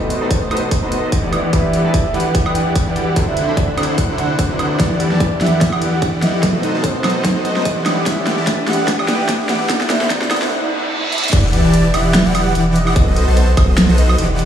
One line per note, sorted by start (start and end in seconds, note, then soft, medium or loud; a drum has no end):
0.00 1.31 B2 medium
0.00 0.18 A3 medium
0.00 1.31 A3 medium
0.00 0.19 B3 medium
0.00 0.19 C4 medium
0.00 0.19 D#4 medium
0.00 1.31 D#4 medium
0.00 0.19 F#4 medium
0.00 0.19 A4 medium
0.00 0.19 B4 loud
0.00 0.19 C5 medium
0.00 1.31 C5 medium
0.00 0.19 D#5 loud
0.00 0.32 D#5 medium
0.00 riser medium
0.10 closed hi-hat medium
0.20 0.26 A3 medium
0.20 0.42 B3 medium
0.20 0.27 C4 medium
0.20 0.27 D#4 medium
0.20 0.42 F#4 medium
0.20 0.27 F#4 medium
0.20 0.42 A4 medium
0.20 0.27 B4 loud
0.20 0.42 C5 medium
0.20 0.42 A5 loud
0.31 0.59 C5 medium
0.31 kick medium
0.31 closed hi-hat medium
0.50 0.57 A3 medium
0.50 0.72 B3 medium
0.50 0.57 C4 medium
0.50 0.58 D#4 medium
0.50 0.72 F#4 medium
0.50 0.58 F#4 medium
0.50 0.72 A4 medium
0.50 0.58 B4 medium
0.50 0.72 C5 medium
0.50 0.72 D#5 loud
0.50 closed hi-hat soft
0.50 high woodblock medium
0.57 closed hi-hat medium
0.71 kick loud
0.71 closed hi-hat medium
0.82 0.91 A3 medium
0.82 1.10 B3 medium
0.82 0.91 C4 medium
0.82 0.91 D#4 medium
0.82 1.10 F#4 medium
0.82 0.92 F#4 medium
0.82 1.10 A4 medium
0.82 0.92 B4 medium
0.82 1.10 C5 medium
0.82 1.10 D#5 medium
0.92 1.20 D#5 medium
0.92 closed hi-hat medium
1.12 1.51 E3 medium
1.12 1.51 E4 medium
1.12 1.51 G4 medium
1.12 1.51 D5 medium
1.12 1.51 F#5 loud
1.12 kick medium
1.12 closed hi-hat medium
1.23 1.50 G3 medium
1.23 1.51 B3 medium
1.23 1.51 D4 medium
1.23 1.51 E4 medium
1.23 1.51 D5 medium
1.33 3.15 E2 medium
1.33 3.15 D3 medium
1.33 3.15 G4 medium
1.33 closed hi-hat medium
1.33 high woodblock medium
1.52 1.82 E3 medium
1.52 1.82 G3 medium
1.52 1.82 B3 medium
1.52 1.82 D4 medium
1.52 1.82 E4 medium
1.52 1.82 G4 medium
1.52 1.83 B4 loud
1.52 1.82 D5 medium
1.52 1.81 E5 medium
1.52 1.82 F#5 loud
1.52 kick medium
1.52 closed hi-hat medium
1.73 closed hi-hat medium
1.84 2.05 E3 medium
1.84 1.90 G3 medium
1.84 1.90 B3 medium
1.84 1.90 D4 medium
1.84 2.05 E4 medium
1.84 1.90 E4 medium
1.84 2.05 G4 medium
1.84 1.91 B4 loud
1.84 2.05 D5 medium
1.84 2.12 E5 loud
1.84 2.05 A5 loud
1.94 kick medium
1.94 closed hi-hat medium
2.13 2.35 E3 medium
2.13 2.20 G3 medium
2.13 2.21 B3 medium
2.13 2.21 D4 medium
2.13 2.35 E4 medium
2.13 2.21 E4 medium
2.13 2.35 G4 medium
2.13 2.21 B4 loud
2.13 2.35 D5 medium
2.13 2.35 F#5 loud
2.13 2.48 F#5 medium
2.13 closed hi-hat soft
2.20 closed hi-hat medium
2.35 kick loud
2.35 closed hi-hat medium
2.45 2.73 E3 medium
2.45 2.54 G3 medium
2.45 2.54 B3 medium
2.45 2.55 D4 medium
2.45 2.73 E4 medium
2.45 2.55 E4 medium
2.45 2.73 G4 medium
2.45 2.55 B4 medium
2.45 2.73 D5 medium
2.45 2.73 F#5 medium
2.45 2.73 G5 medium
2.45 high woodblock medium
2.55 closed hi-hat medium
2.75 3.14 E3 medium
2.75 3.14 E4 medium
2.75 3.14 G4 medium
2.75 3.14 D5 medium
2.75 3.14 F#5 loud
2.75 kick medium
2.75 closed hi-hat medium
2.86 3.14 G3 medium
2.86 3.14 B3 medium
2.86 3.14 D4 medium
2.86 3.14 E4 medium
2.86 3.15 D5 medium
2.96 3.24 F#5 medium
2.96 closed hi-hat medium
3.15 4.78 D2 medium
3.15 4.78 C3 medium
3.15 3.45 D3 medium
3.15 3.45 F#3 medium
3.15 3.45 C4 medium
3.15 3.45 D4 medium
3.15 3.45 E4 medium
3.15 4.78 E4 medium
3.15 3.46 E4 medium
3.15 4.78 F#4 medium
3.15 3.46 A4 loud
3.15 3.45 C5 medium
3.15 3.45 F#5 loud
3.15 kick loud
3.15 closed hi-hat medium
3.28 3.54 E5 medium
3.37 closed hi-hat medium
3.47 3.69 D3 medium
3.47 3.53 F#3 medium
3.47 3.53 C4 medium
3.47 3.53 D4 medium
3.47 3.69 D4 medium
3.47 3.69 E4 medium
3.47 3.54 E4 medium
3.47 3.54 A4 loud
3.47 3.69 C5 medium
3.47 3.69 B5 medium
3.57 3.85 D5 medium
3.57 kick loud
3.57 closed hi-hat medium
3.77 3.98 D3 medium
3.77 3.84 F#3 medium
3.77 3.84 C4 medium
3.77 3.84 D4 medium
3.77 3.98 D4 medium
3.77 3.98 E4 medium
3.77 3.84 E4 medium
3.77 3.85 A4 loud
3.77 3.98 C5 medium
3.77 3.98 F#5 loud
3.77 closed hi-hat soft
3.77 high woodblock medium
3.83 closed hi-hat medium
3.98 kick loud
3.98 closed hi-hat medium
4.08 4.37 D3 medium
4.08 4.17 F#3 medium
4.08 4.18 C4 medium
4.08 4.37 D4 medium
4.08 4.18 D4 medium
4.08 4.37 E4 medium
4.08 4.18 E4 medium
4.08 4.18 A4 medium
4.08 4.37 C5 medium
4.08 4.37 F#5 medium
4.18 4.47 F#5 medium
4.18 closed hi-hat medium
4.39 4.77 D3 medium
4.39 4.77 D4 medium
4.39 4.77 E4 medium
4.39 4.77 C5 medium
4.39 4.77 F#5 loud
4.39 kick medium
4.39 closed hi-hat medium
4.49 4.77 F#3 medium
4.49 4.77 C4 medium
4.49 4.77 D4 medium
4.49 4.78 E4 medium
4.49 4.78 B4 medium
4.59 closed hi-hat medium
4.59 high woodblock medium
4.79 6.41 E2 medium
4.79 6.41 D3 medium
4.79 5.09 E3 medium
4.79 4.86 D4 medium
4.79 5.09 E4 medium
4.79 5.09 G4 medium
4.79 6.41 G4 medium
4.79 5.08 D5 loud
4.79 5.09 D5 medium
4.79 5.09 F#5 loud
4.79 kick medium
4.79 snare soft
4.79 closed hi-hat medium
5.00 5.07 E5 medium
5.00 closed hi-hat medium
5.11 5.32 E3 medium
5.11 5.32 E4 medium
5.11 5.32 G4 medium
5.11 5.32 D5 medium
5.11 5.38 D5 medium
5.11 5.32 A5 medium
5.11 snare soft
5.20 5.27 G4 medium
5.20 kick loud
5.20 closed hi-hat medium
5.41 5.62 E3 medium
5.41 5.47 D4 medium
5.41 5.62 E4 medium
5.41 5.62 G4 medium
5.41 5.62 D5 medium
5.41 5.69 E5 medium
5.41 5.62 F#5 loud
5.41 snare medium
5.41 closed hi-hat soft
5.46 closed hi-hat medium
5.61 5.68 E5 medium
5.61 kick loud
5.61 snare medium
5.61 closed hi-hat medium
5.72 6.00 E3 medium
5.72 6.00 E4 medium
5.72 6.00 G4 medium
5.72 6.00 D5 medium
5.72 6.00 F#5 medium
5.72 5.99 F#5 medium
5.72 high woodblock medium
5.81 5.88 G4 medium
5.81 closed hi-hat medium
6.02 6.41 E3 medium
6.02 6.09 D4 medium
6.02 6.41 E4 medium
6.02 6.41 G4 medium
6.02 6.41 D5 medium
6.02 6.41 F#5 loud
6.02 kick medium
6.02 closed hi-hat medium
6.22 6.51 D#5 medium
6.22 6.29 E5 medium
6.22 snare medium
6.22 closed hi-hat medium
6.43 7.84 B2 medium
6.43 7.84 A3 medium
6.43 6.72 B3 medium
6.43 7.84 D#4 medium
6.43 6.72 F#4 medium
6.43 6.50 A4 medium
6.43 6.72 A4 medium
6.43 6.72 C5 medium
6.43 7.84 C5 medium
6.43 6.72 D#5 loud
6.43 kick loud
6.43 snare medium
6.43 closed hi-hat medium
6.54 6.85 D#5 medium
6.63 6.70 D#4 medium
6.63 closed hi-hat medium
6.75 6.95 B3 medium
6.75 6.95 F#4 medium
6.75 6.95 A4 medium
6.75 6.95 C5 medium
6.75 6.95 A5 loud
6.84 7.12 C5 medium
6.84 6.90 D#5 medium
6.84 kick loud
6.84 closed hi-hat medium
7.04 7.25 B3 medium
7.04 7.25 F#4 medium
7.04 7.25 A4 medium
7.04 7.11 A4 medium
7.04 7.25 C5 medium
7.04 7.25 D#5 loud
7.04 snare medium
7.04 closed hi-hat soft
7.04 high woodblock medium
7.10 closed hi-hat medium
7.25 7.31 D#4 medium
7.25 kick loud
7.25 snare medium
7.25 closed hi-hat medium
7.36 7.63 B3 medium
7.36 7.63 F#4 medium
7.36 7.63 A4 medium
7.36 7.63 C5 medium
7.36 7.63 D#5 loud
7.45 7.52 D#5 medium
7.45 7.73 D#5 medium
7.45 closed hi-hat medium
7.56 snare medium
7.65 8.04 E3 medium
7.65 8.04 E4 medium
7.65 8.04 G4 medium
7.65 7.72 A4 medium
7.65 8.04 D5 medium
7.65 8.04 F#5 loud
7.65 kick medium
7.65 closed hi-hat medium
7.86 9.68 E2 medium
7.86 9.68 D3 medium
7.86 7.92 D4 medium
7.86 9.68 G4 medium
7.86 snare medium
7.86 closed hi-hat medium
7.86 high woodblock medium
8.06 8.35 E3 medium
8.06 8.35 E4 medium
8.06 8.35 G4 medium
8.06 8.35 D5 medium
8.06 8.13 E5 medium
8.06 8.35 E5 loud
8.06 8.35 F#5 loud
8.06 kick loud
8.06 snare medium
8.06 closed hi-hat medium
8.27 8.33 G4 medium
8.27 snare medium
8.27 closed hi-hat medium
8.38 8.59 E3 medium
8.38 8.59 E4 medium
8.38 8.59 G4 medium
8.38 8.59 D5 medium
8.38 8.69 E5 loud
8.38 8.59 A5 loud
8.47 8.54 D4 medium
8.47 kick loud
8.47 snare medium
8.47 closed hi-hat medium
8.67 8.88 E3 medium
8.67 8.88 E4 medium
8.67 8.88 G4 medium
8.67 8.88 D5 medium
8.67 8.74 E5 medium
8.67 9.01 F#5 medium
8.67 8.88 F#5 loud
8.67 snare medium
8.67 closed hi-hat soft
8.73 closed hi-hat medium
8.88 8.94 G4 medium
8.88 kick loud
8.88 snare medium
8.88 closed hi-hat medium
8.99 9.26 E3 medium
8.99 9.26 E4 medium
8.99 9.26 G4 medium
8.99 9.26 D5 medium
8.99 9.26 F#5 medium
8.99 9.26 G5 medium
8.99 high woodblock medium
9.08 9.15 D4 medium
9.08 snare medium
9.08 closed hi-hat medium
9.29 9.67 E3 loud
9.29 9.67 E4 medium
9.29 9.67 G4 medium
9.29 9.67 D5 medium
9.29 9.35 E5 medium
9.29 9.67 F#5 loud
9.29 kick medium
9.29 snare medium
9.29 closed hi-hat medium
9.49 9.56 G4 medium
9.49 9.82 F#5 loud
9.49 snare medium
9.49 closed hi-hat medium
9.69 11.31 D2 medium
9.69 11.31 C3 medium
9.69 9.98 D3 medium
9.69 9.98 D4 medium
9.69 9.76 D4 medium
9.69 9.98 E4 medium
9.69 11.31 E4 medium
9.69 11.31 F#4 medium
9.69 9.98 C5 medium
9.69 9.98 F#5 loud
9.69 kick loud
9.69 snare medium
9.69 closed hi-hat medium
9.81 10.08 E5 medium
9.81 snare medium
9.90 9.96 D5 medium
9.90 snare medium
9.90 closed hi-hat medium
10.01 10.22 D3 medium
10.01 10.22 D4 medium
10.01 10.22 E4 medium
10.01 10.22 C5 medium
10.01 10.22 B5 loud
10.01 snare medium
10.10 10.17 F#4 medium
10.10 10.39 D5 medium
10.10 kick loud
10.10 snare medium
10.10 closed hi-hat medium
10.22 snare medium
10.31 10.51 D3 medium
10.31 10.37 D4 medium
10.31 10.51 D4 medium
10.31 10.51 E4 medium
10.31 10.51 C5 medium
10.31 10.51 F#5 loud
10.31 snare medium
10.31 closed hi-hat soft
10.31 high woodblock medium
10.36 closed hi-hat medium
10.42 snare medium
10.51 reverse cymbal medium
11.12 closed hi-hat medium
11.18 closed hi-hat medium
11.24 closed hi-hat medium
11.28 closed hi-hat medium
11.33 11.62 E1 loud
11.33 11.62 E3 medium
11.33 11.62 E4 medium
11.33 11.62 G4 medium
11.33 11.62 D5 medium
11.33 11.61 D5 loud
11.33 11.62 F#5 loud
11.33 kick loud
11.33 closed hi-hat medium
11.33 crash loud
11.33 sub drop medium
11.53 closed hi-hat medium
11.64 11.92 E1 loud
11.64 11.85 E3 medium
11.64 11.85 E4 medium
11.64 11.85 G4 medium
11.64 11.95 D5 loud
11.64 11.85 D5 medium
11.64 11.85 A5 loud
11.74 closed hi-hat medium
11.94 12.23 E1 medium
11.94 12.15 E3 medium
11.94 12.15 E4 medium
11.94 12.15 G4 medium
11.94 12.15 D5 medium
11.94 12.27 E5 medium
11.94 12.15 F#5 loud
11.94 closed hi-hat medium
11.94 high woodblock medium
12.14 snare loud
12.14 closed hi-hat medium
12.26 12.53 E1 loud
12.26 12.53 E3 medium
12.26 12.53 E4 medium
12.26 12.53 G4 medium
12.26 12.53 D5 medium
12.26 12.52 F#5 medium
12.26 12.53 F#5 medium
12.35 closed hi-hat medium
12.35 high woodblock medium
12.55 12.94 E1 medium
12.55 12.94 E3 medium
12.55 12.94 E4 medium
12.55 12.94 G4 medium
12.55 12.94 D5 medium
12.55 12.94 F#5 loud
12.55 closed hi-hat medium
12.76 13.04 D#5 loud
12.76 closed hi-hat medium
12.87 high woodblock medium
12.96 13.25 B1 loud
12.96 13.25 B3 medium
12.96 13.25 F#4 medium
12.96 13.25 A4 medium
12.96 13.25 C5 medium
12.96 13.25 D#5 loud
12.96 kick loud
12.96 closed hi-hat medium
13.07 13.34 D#5 medium
13.16 closed hi-hat medium
13.28 13.55 B1 loud
13.28 13.48 B3 medium
13.28 13.48 F#4 medium
13.28 13.48 A4 medium
13.28 13.48 C5 medium
13.28 13.48 A5 loud
13.37 13.65 C5 loud
13.37 closed hi-hat medium
13.57 13.87 B1 loud
13.57 13.78 B3 medium
13.57 13.78 F#4 medium
13.57 13.78 A4 medium
13.57 13.78 C5 medium
13.57 13.78 D#5 loud
13.57 kick loud
13.57 closed hi-hat medium
13.57 high woodblock medium
13.78 snare loud
13.78 closed hi-hat medium
13.89 14.17 B1 loud
13.89 14.16 B3 medium
13.89 14.16 F#4 medium
13.89 14.16 A4 medium
13.89 14.16 C5 medium
13.89 14.16 D#5 medium
13.98 14.26 D#5 loud
13.98 closed hi-hat medium
14.09 high woodblock medium
14.18 14.45 E1 loud
14.18 14.45 E3 medium
14.18 14.45 E4 medium
14.18 14.45 G4 medium
14.18 14.45 D5 medium
14.18 14.45 F#5 loud
14.18 closed hi-hat medium
14.39 closed hi-hat medium